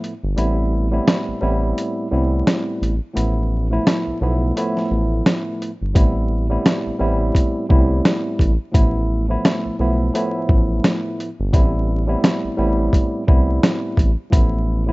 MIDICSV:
0, 0, Header, 1, 4, 480
1, 0, Start_track
1, 0, Key_signature, 0, "minor"
1, 0, Tempo, 697674
1, 255, Time_signature, 4, 2, 24, 8
1, 10268, End_track
2, 0, Start_track
2, 0, Title_t, "Tine electric piano"
2, 0, Program_c, 0, 4
2, 0, Note_on_c, 0, 45, 99
2, 0, Note_on_c, 0, 53, 87
2, 0, Note_on_c, 0, 57, 95
2, 0, Note_on_c, 0, 59, 87
2, 0, Note_on_c, 0, 64, 101
2, 77, Note_off_c, 0, 45, 0
2, 79, Note_off_c, 0, 53, 0
2, 81, Note_off_c, 0, 57, 0
2, 83, Note_off_c, 0, 59, 0
2, 85, Note_off_c, 0, 64, 0
2, 247, Note_on_c, 0, 45, 90
2, 251, Note_on_c, 0, 55, 85
2, 255, Note_on_c, 0, 59, 87
2, 259, Note_on_c, 0, 60, 82
2, 264, Note_on_c, 0, 64, 107
2, 599, Note_off_c, 0, 45, 0
2, 601, Note_off_c, 0, 55, 0
2, 603, Note_off_c, 0, 59, 0
2, 605, Note_off_c, 0, 60, 0
2, 607, Note_off_c, 0, 64, 0
2, 625, Note_on_c, 0, 45, 94
2, 630, Note_on_c, 0, 55, 84
2, 633, Note_on_c, 0, 59, 80
2, 638, Note_on_c, 0, 60, 78
2, 642, Note_on_c, 0, 64, 98
2, 945, Note_off_c, 0, 45, 0
2, 947, Note_off_c, 0, 55, 0
2, 949, Note_off_c, 0, 59, 0
2, 951, Note_off_c, 0, 60, 0
2, 954, Note_off_c, 0, 64, 0
2, 966, Note_on_c, 0, 45, 99
2, 970, Note_on_c, 0, 55, 94
2, 975, Note_on_c, 0, 59, 83
2, 979, Note_on_c, 0, 60, 86
2, 983, Note_on_c, 0, 64, 107
2, 1419, Note_off_c, 0, 45, 0
2, 1421, Note_off_c, 0, 55, 0
2, 1423, Note_off_c, 0, 59, 0
2, 1425, Note_off_c, 0, 60, 0
2, 1427, Note_off_c, 0, 64, 0
2, 1447, Note_on_c, 0, 45, 95
2, 1451, Note_on_c, 0, 55, 84
2, 1455, Note_on_c, 0, 59, 83
2, 1460, Note_on_c, 0, 60, 87
2, 1464, Note_on_c, 0, 64, 96
2, 2016, Note_off_c, 0, 45, 0
2, 2018, Note_off_c, 0, 55, 0
2, 2020, Note_off_c, 0, 59, 0
2, 2023, Note_off_c, 0, 60, 0
2, 2025, Note_off_c, 0, 64, 0
2, 2158, Note_on_c, 0, 45, 98
2, 2162, Note_on_c, 0, 53, 77
2, 2167, Note_on_c, 0, 57, 77
2, 2171, Note_on_c, 0, 59, 93
2, 2175, Note_on_c, 0, 64, 100
2, 2514, Note_off_c, 0, 45, 0
2, 2516, Note_off_c, 0, 53, 0
2, 2519, Note_off_c, 0, 57, 0
2, 2521, Note_off_c, 0, 59, 0
2, 2523, Note_off_c, 0, 64, 0
2, 2546, Note_on_c, 0, 45, 89
2, 2550, Note_on_c, 0, 53, 85
2, 2555, Note_on_c, 0, 57, 78
2, 2559, Note_on_c, 0, 59, 76
2, 2563, Note_on_c, 0, 64, 105
2, 2866, Note_off_c, 0, 45, 0
2, 2868, Note_off_c, 0, 53, 0
2, 2870, Note_off_c, 0, 57, 0
2, 2872, Note_off_c, 0, 59, 0
2, 2874, Note_off_c, 0, 64, 0
2, 2893, Note_on_c, 0, 45, 91
2, 2897, Note_on_c, 0, 53, 90
2, 2902, Note_on_c, 0, 57, 86
2, 2906, Note_on_c, 0, 59, 91
2, 2910, Note_on_c, 0, 64, 95
2, 3118, Note_off_c, 0, 45, 0
2, 3120, Note_off_c, 0, 53, 0
2, 3122, Note_off_c, 0, 57, 0
2, 3124, Note_off_c, 0, 59, 0
2, 3127, Note_off_c, 0, 64, 0
2, 3133, Note_on_c, 0, 45, 95
2, 3138, Note_on_c, 0, 53, 81
2, 3142, Note_on_c, 0, 57, 93
2, 3147, Note_on_c, 0, 59, 91
2, 3151, Note_on_c, 0, 64, 104
2, 3917, Note_off_c, 0, 45, 0
2, 3919, Note_off_c, 0, 53, 0
2, 3921, Note_off_c, 0, 57, 0
2, 3923, Note_off_c, 0, 59, 0
2, 3925, Note_off_c, 0, 64, 0
2, 4086, Note_on_c, 0, 45, 90
2, 4090, Note_on_c, 0, 55, 84
2, 4095, Note_on_c, 0, 59, 89
2, 4099, Note_on_c, 0, 60, 83
2, 4103, Note_on_c, 0, 64, 101
2, 4438, Note_off_c, 0, 45, 0
2, 4440, Note_off_c, 0, 55, 0
2, 4443, Note_off_c, 0, 59, 0
2, 4445, Note_off_c, 0, 60, 0
2, 4447, Note_off_c, 0, 64, 0
2, 4465, Note_on_c, 0, 45, 91
2, 4469, Note_on_c, 0, 55, 84
2, 4473, Note_on_c, 0, 59, 80
2, 4478, Note_on_c, 0, 60, 75
2, 4482, Note_on_c, 0, 64, 96
2, 4785, Note_off_c, 0, 45, 0
2, 4787, Note_off_c, 0, 55, 0
2, 4789, Note_off_c, 0, 59, 0
2, 4792, Note_off_c, 0, 60, 0
2, 4793, Note_off_c, 0, 64, 0
2, 4804, Note_on_c, 0, 45, 94
2, 4809, Note_on_c, 0, 55, 91
2, 4813, Note_on_c, 0, 59, 84
2, 4818, Note_on_c, 0, 60, 90
2, 4822, Note_on_c, 0, 64, 104
2, 5258, Note_off_c, 0, 45, 0
2, 5260, Note_off_c, 0, 55, 0
2, 5262, Note_off_c, 0, 59, 0
2, 5265, Note_off_c, 0, 60, 0
2, 5267, Note_off_c, 0, 64, 0
2, 5287, Note_on_c, 0, 45, 96
2, 5291, Note_on_c, 0, 55, 85
2, 5296, Note_on_c, 0, 59, 84
2, 5300, Note_on_c, 0, 60, 86
2, 5304, Note_on_c, 0, 64, 100
2, 5856, Note_off_c, 0, 45, 0
2, 5858, Note_off_c, 0, 55, 0
2, 5860, Note_off_c, 0, 59, 0
2, 5863, Note_off_c, 0, 60, 0
2, 5865, Note_off_c, 0, 64, 0
2, 5998, Note_on_c, 0, 45, 95
2, 6002, Note_on_c, 0, 53, 81
2, 6007, Note_on_c, 0, 57, 75
2, 6011, Note_on_c, 0, 59, 90
2, 6016, Note_on_c, 0, 64, 105
2, 6354, Note_off_c, 0, 45, 0
2, 6356, Note_off_c, 0, 53, 0
2, 6359, Note_off_c, 0, 57, 0
2, 6361, Note_off_c, 0, 59, 0
2, 6363, Note_off_c, 0, 64, 0
2, 6385, Note_on_c, 0, 45, 90
2, 6389, Note_on_c, 0, 53, 82
2, 6393, Note_on_c, 0, 57, 82
2, 6398, Note_on_c, 0, 59, 77
2, 6402, Note_on_c, 0, 64, 105
2, 6705, Note_off_c, 0, 45, 0
2, 6707, Note_off_c, 0, 53, 0
2, 6709, Note_off_c, 0, 57, 0
2, 6712, Note_off_c, 0, 59, 0
2, 6714, Note_off_c, 0, 64, 0
2, 6732, Note_on_c, 0, 45, 91
2, 6737, Note_on_c, 0, 53, 90
2, 6741, Note_on_c, 0, 57, 90
2, 6746, Note_on_c, 0, 59, 90
2, 6749, Note_on_c, 0, 64, 99
2, 6958, Note_off_c, 0, 45, 0
2, 6960, Note_off_c, 0, 53, 0
2, 6962, Note_off_c, 0, 57, 0
2, 6964, Note_off_c, 0, 59, 0
2, 6966, Note_off_c, 0, 64, 0
2, 6972, Note_on_c, 0, 45, 98
2, 6977, Note_on_c, 0, 53, 86
2, 6981, Note_on_c, 0, 57, 90
2, 6985, Note_on_c, 0, 59, 88
2, 6990, Note_on_c, 0, 64, 100
2, 7756, Note_off_c, 0, 45, 0
2, 7758, Note_off_c, 0, 53, 0
2, 7760, Note_off_c, 0, 57, 0
2, 7762, Note_off_c, 0, 59, 0
2, 7765, Note_off_c, 0, 64, 0
2, 7925, Note_on_c, 0, 45, 91
2, 7929, Note_on_c, 0, 55, 86
2, 7934, Note_on_c, 0, 59, 86
2, 7938, Note_on_c, 0, 60, 81
2, 7942, Note_on_c, 0, 64, 103
2, 8278, Note_off_c, 0, 45, 0
2, 8280, Note_off_c, 0, 55, 0
2, 8282, Note_off_c, 0, 59, 0
2, 8284, Note_off_c, 0, 60, 0
2, 8286, Note_off_c, 0, 64, 0
2, 8303, Note_on_c, 0, 45, 96
2, 8308, Note_on_c, 0, 55, 83
2, 8312, Note_on_c, 0, 59, 78
2, 8316, Note_on_c, 0, 60, 77
2, 8321, Note_on_c, 0, 64, 99
2, 8624, Note_off_c, 0, 45, 0
2, 8626, Note_off_c, 0, 55, 0
2, 8628, Note_off_c, 0, 59, 0
2, 8631, Note_off_c, 0, 60, 0
2, 8633, Note_off_c, 0, 64, 0
2, 8645, Note_on_c, 0, 45, 100
2, 8649, Note_on_c, 0, 55, 96
2, 8654, Note_on_c, 0, 59, 86
2, 8658, Note_on_c, 0, 60, 90
2, 8662, Note_on_c, 0, 64, 99
2, 9098, Note_off_c, 0, 45, 0
2, 9101, Note_off_c, 0, 55, 0
2, 9103, Note_off_c, 0, 59, 0
2, 9105, Note_off_c, 0, 60, 0
2, 9107, Note_off_c, 0, 64, 0
2, 9126, Note_on_c, 0, 45, 91
2, 9130, Note_on_c, 0, 55, 85
2, 9134, Note_on_c, 0, 59, 88
2, 9139, Note_on_c, 0, 60, 82
2, 9143, Note_on_c, 0, 64, 102
2, 9696, Note_off_c, 0, 45, 0
2, 9698, Note_off_c, 0, 55, 0
2, 9700, Note_off_c, 0, 59, 0
2, 9702, Note_off_c, 0, 60, 0
2, 9704, Note_off_c, 0, 64, 0
2, 9837, Note_on_c, 0, 45, 93
2, 9842, Note_on_c, 0, 53, 80
2, 9846, Note_on_c, 0, 57, 75
2, 9850, Note_on_c, 0, 59, 89
2, 9855, Note_on_c, 0, 64, 102
2, 10194, Note_off_c, 0, 45, 0
2, 10196, Note_off_c, 0, 53, 0
2, 10198, Note_off_c, 0, 57, 0
2, 10200, Note_off_c, 0, 59, 0
2, 10203, Note_off_c, 0, 64, 0
2, 10224, Note_on_c, 0, 45, 90
2, 10228, Note_on_c, 0, 53, 80
2, 10233, Note_on_c, 0, 57, 78
2, 10237, Note_on_c, 0, 59, 76
2, 10241, Note_on_c, 0, 64, 105
2, 10268, Note_off_c, 0, 45, 0
2, 10268, Note_off_c, 0, 53, 0
2, 10268, Note_off_c, 0, 57, 0
2, 10268, Note_off_c, 0, 59, 0
2, 10268, Note_off_c, 0, 64, 0
2, 10268, End_track
3, 0, Start_track
3, 0, Title_t, "Analog synth bass"
3, 0, Program_c, 1, 38
3, 161, Note_on_c, 1, 31, 85
3, 247, Note_off_c, 1, 31, 0
3, 258, Note_on_c, 1, 33, 103
3, 686, Note_off_c, 1, 33, 0
3, 881, Note_on_c, 1, 33, 49
3, 919, Note_off_c, 1, 33, 0
3, 978, Note_on_c, 1, 33, 95
3, 1191, Note_off_c, 1, 33, 0
3, 1458, Note_on_c, 1, 36, 96
3, 1671, Note_off_c, 1, 36, 0
3, 1938, Note_on_c, 1, 33, 95
3, 2064, Note_off_c, 1, 33, 0
3, 2177, Note_on_c, 1, 33, 105
3, 2606, Note_off_c, 1, 33, 0
3, 2800, Note_on_c, 1, 35, 49
3, 2838, Note_off_c, 1, 35, 0
3, 2898, Note_on_c, 1, 35, 95
3, 3111, Note_off_c, 1, 35, 0
3, 3378, Note_on_c, 1, 33, 95
3, 3591, Note_off_c, 1, 33, 0
3, 4000, Note_on_c, 1, 31, 83
3, 4086, Note_off_c, 1, 31, 0
3, 4097, Note_on_c, 1, 33, 108
3, 4526, Note_off_c, 1, 33, 0
3, 4720, Note_on_c, 1, 33, 49
3, 4758, Note_off_c, 1, 33, 0
3, 4818, Note_on_c, 1, 33, 93
3, 5031, Note_off_c, 1, 33, 0
3, 5299, Note_on_c, 1, 36, 97
3, 5512, Note_off_c, 1, 36, 0
3, 5775, Note_on_c, 1, 33, 94
3, 5902, Note_off_c, 1, 33, 0
3, 6017, Note_on_c, 1, 33, 104
3, 6446, Note_off_c, 1, 33, 0
3, 6640, Note_on_c, 1, 35, 50
3, 6678, Note_off_c, 1, 35, 0
3, 6738, Note_on_c, 1, 35, 95
3, 6951, Note_off_c, 1, 35, 0
3, 7219, Note_on_c, 1, 33, 92
3, 7432, Note_off_c, 1, 33, 0
3, 7840, Note_on_c, 1, 31, 85
3, 7926, Note_off_c, 1, 31, 0
3, 7937, Note_on_c, 1, 33, 101
3, 8366, Note_off_c, 1, 33, 0
3, 8560, Note_on_c, 1, 33, 47
3, 8598, Note_off_c, 1, 33, 0
3, 8658, Note_on_c, 1, 33, 92
3, 8871, Note_off_c, 1, 33, 0
3, 9139, Note_on_c, 1, 36, 97
3, 9352, Note_off_c, 1, 36, 0
3, 9616, Note_on_c, 1, 33, 97
3, 9742, Note_off_c, 1, 33, 0
3, 9857, Note_on_c, 1, 33, 101
3, 10268, Note_off_c, 1, 33, 0
3, 10268, End_track
4, 0, Start_track
4, 0, Title_t, "Drums"
4, 26, Note_on_c, 9, 42, 46
4, 95, Note_off_c, 9, 42, 0
4, 259, Note_on_c, 9, 42, 91
4, 327, Note_off_c, 9, 42, 0
4, 740, Note_on_c, 9, 42, 80
4, 741, Note_on_c, 9, 38, 120
4, 809, Note_off_c, 9, 38, 0
4, 809, Note_off_c, 9, 42, 0
4, 1224, Note_on_c, 9, 42, 86
4, 1292, Note_off_c, 9, 42, 0
4, 1700, Note_on_c, 9, 38, 117
4, 1703, Note_on_c, 9, 42, 75
4, 1769, Note_off_c, 9, 38, 0
4, 1771, Note_off_c, 9, 42, 0
4, 1947, Note_on_c, 9, 42, 45
4, 2015, Note_off_c, 9, 42, 0
4, 2179, Note_on_c, 9, 42, 90
4, 2248, Note_off_c, 9, 42, 0
4, 2660, Note_on_c, 9, 42, 78
4, 2661, Note_on_c, 9, 38, 120
4, 2729, Note_off_c, 9, 42, 0
4, 2730, Note_off_c, 9, 38, 0
4, 3144, Note_on_c, 9, 42, 83
4, 3213, Note_off_c, 9, 42, 0
4, 3281, Note_on_c, 9, 38, 37
4, 3350, Note_off_c, 9, 38, 0
4, 3620, Note_on_c, 9, 38, 112
4, 3622, Note_on_c, 9, 42, 75
4, 3689, Note_off_c, 9, 38, 0
4, 3691, Note_off_c, 9, 42, 0
4, 3866, Note_on_c, 9, 42, 46
4, 3935, Note_off_c, 9, 42, 0
4, 4096, Note_on_c, 9, 36, 109
4, 4098, Note_on_c, 9, 42, 92
4, 4164, Note_off_c, 9, 36, 0
4, 4167, Note_off_c, 9, 42, 0
4, 4580, Note_on_c, 9, 42, 80
4, 4581, Note_on_c, 9, 38, 124
4, 4649, Note_off_c, 9, 42, 0
4, 4650, Note_off_c, 9, 38, 0
4, 5055, Note_on_c, 9, 36, 88
4, 5064, Note_on_c, 9, 42, 85
4, 5124, Note_off_c, 9, 36, 0
4, 5133, Note_off_c, 9, 42, 0
4, 5298, Note_on_c, 9, 36, 102
4, 5367, Note_off_c, 9, 36, 0
4, 5540, Note_on_c, 9, 38, 114
4, 5542, Note_on_c, 9, 42, 72
4, 5609, Note_off_c, 9, 38, 0
4, 5611, Note_off_c, 9, 42, 0
4, 5774, Note_on_c, 9, 36, 81
4, 5786, Note_on_c, 9, 42, 47
4, 5843, Note_off_c, 9, 36, 0
4, 5855, Note_off_c, 9, 42, 0
4, 6016, Note_on_c, 9, 36, 109
4, 6019, Note_on_c, 9, 42, 90
4, 6084, Note_off_c, 9, 36, 0
4, 6088, Note_off_c, 9, 42, 0
4, 6500, Note_on_c, 9, 42, 76
4, 6501, Note_on_c, 9, 38, 123
4, 6569, Note_off_c, 9, 42, 0
4, 6570, Note_off_c, 9, 38, 0
4, 6984, Note_on_c, 9, 42, 84
4, 7052, Note_off_c, 9, 42, 0
4, 7218, Note_on_c, 9, 36, 100
4, 7286, Note_off_c, 9, 36, 0
4, 7460, Note_on_c, 9, 38, 117
4, 7462, Note_on_c, 9, 42, 73
4, 7528, Note_off_c, 9, 38, 0
4, 7531, Note_off_c, 9, 42, 0
4, 7706, Note_on_c, 9, 42, 46
4, 7775, Note_off_c, 9, 42, 0
4, 7935, Note_on_c, 9, 36, 107
4, 7938, Note_on_c, 9, 42, 91
4, 8004, Note_off_c, 9, 36, 0
4, 8007, Note_off_c, 9, 42, 0
4, 8420, Note_on_c, 9, 42, 79
4, 8421, Note_on_c, 9, 38, 124
4, 8489, Note_off_c, 9, 42, 0
4, 8490, Note_off_c, 9, 38, 0
4, 8895, Note_on_c, 9, 36, 83
4, 8904, Note_on_c, 9, 42, 85
4, 8964, Note_off_c, 9, 36, 0
4, 8973, Note_off_c, 9, 42, 0
4, 9138, Note_on_c, 9, 36, 100
4, 9207, Note_off_c, 9, 36, 0
4, 9380, Note_on_c, 9, 38, 113
4, 9383, Note_on_c, 9, 42, 78
4, 9449, Note_off_c, 9, 38, 0
4, 9451, Note_off_c, 9, 42, 0
4, 9614, Note_on_c, 9, 36, 83
4, 9626, Note_on_c, 9, 42, 47
4, 9683, Note_off_c, 9, 36, 0
4, 9695, Note_off_c, 9, 42, 0
4, 9855, Note_on_c, 9, 36, 109
4, 9859, Note_on_c, 9, 42, 91
4, 9924, Note_off_c, 9, 36, 0
4, 9928, Note_off_c, 9, 42, 0
4, 10268, End_track
0, 0, End_of_file